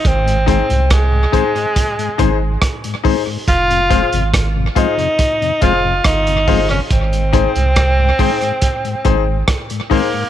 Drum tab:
HH |xxxxx-xxxxx-xxo-|xxxxx-xxxxx-xxo-|xxxxx-oxxxx-xxo-|
SD |----r-------r---|----r-------r--r|----r-------r---|
BD |o-o-o-o-o-o-o-o-|o-o-o-o-o-o-o-o-|o-o-o-o-o-o-o-o-|